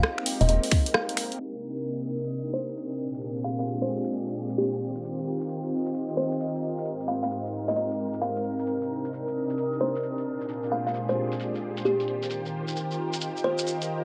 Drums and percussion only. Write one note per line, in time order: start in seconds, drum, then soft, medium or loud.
0.03 cross-stick loud
0.18 finger snap soft
0.26 open hi-hat loud
0.41 open hi-hat medium
0.49 closed hi-hat medium
0.64 open hi-hat medium
0.71 finger snap medium
0.71 kick loud
0.71 open hi-hat loud
0.86 closed hi-hat medium
0.94 cross-stick loud
1.09 closed hi-hat medium
1.17 finger snap soft
1.17 open hi-hat loud
1.32 closed hi-hat soft
1.40 shekere medium
1.55 shekere soft
1.77 shekere medium
1.85 shekere medium
2.00 shekere soft
2.23 closed hi-hat medium
2.23 shekere medium
2.30 closed hi-hat medium
2.30 shekere medium
2.45 shekere soft
2.68 closed hi-hat medium
2.68 shekere medium
2.77 shekere medium
2.91 closed hi-hat soft
2.91 shekere soft
3.14 shekere medium
3.21 closed hi-hat medium
3.21 shekere medium
3.36 shekere soft
3.60 shekere medium
3.67 shekere medium
3.81 shekere soft
4.04 closed hi-hat medium
4.04 shekere medium
4.12 closed hi-hat medium
4.12 shekere medium
4.28 shekere soft
4.49 closed hi-hat medium
4.49 shekere medium
4.58 shekere medium
4.72 closed hi-hat soft
4.72 shekere soft
4.81 closed hi-hat soft
4.95 closed hi-hat soft
4.95 shekere medium
5.04 closed hi-hat medium
5.04 shekere medium
5.18 shekere soft
5.41 shekere medium
5.49 shekere medium
5.63 shekere soft
5.86 closed hi-hat medium
5.86 shekere medium
5.94 closed hi-hat medium
5.94 shekere medium
6.09 shekere soft
6.32 closed hi-hat medium
6.32 shekere medium
6.40 shekere medium
6.55 closed hi-hat soft
6.55 shekere soft
6.78 shekere medium
6.85 closed hi-hat medium
6.85 shekere medium
7.00 shekere soft
7.23 shekere medium
7.31 shekere medium
7.45 shekere soft
7.68 closed hi-hat medium
7.68 shekere medium
7.76 closed hi-hat medium
7.76 shekere medium
7.91 shekere soft
8.14 closed hi-hat medium
8.14 shekere medium
8.21 shekere medium
8.36 closed hi-hat soft
8.36 shekere soft
8.44 closed hi-hat soft
8.59 closed hi-hat soft
8.59 shekere medium
8.67 closed hi-hat medium
8.67 shekere medium
8.81 shekere soft
9.04 shekere medium
9.13 shekere medium
9.27 shekere soft
9.50 closed hi-hat medium
9.50 shekere medium
9.58 closed hi-hat medium
9.58 shekere medium
9.73 shekere soft
9.95 closed hi-hat medium
9.95 shekere medium
10.03 shekere medium
10.18 closed hi-hat soft
10.18 shekere soft
10.41 shekere medium
10.49 closed hi-hat medium
10.49 shekere medium
10.63 shekere soft
10.87 shekere medium
10.94 shekere medium
11.09 shekere soft
11.32 closed hi-hat medium
11.32 shekere medium
11.40 closed hi-hat medium
11.40 shekere medium
11.55 shekere soft
11.77 closed hi-hat medium
11.77 shekere medium
11.85 shekere medium
12.00 closed hi-hat soft
12.00 shekere soft
12.08 closed hi-hat soft
12.23 closed hi-hat soft
12.23 shekere medium
12.30 closed hi-hat medium
12.30 shekere medium
12.46 shekere soft
12.68 shekere medium
12.76 shekere medium
12.91 shekere soft
13.13 closed hi-hat medium
13.13 shekere medium
13.21 closed hi-hat medium
13.21 shekere medium
13.37 shekere soft
13.58 closed hi-hat medium
13.58 shekere medium
13.67 shekere medium
13.82 closed hi-hat medium
13.82 shekere soft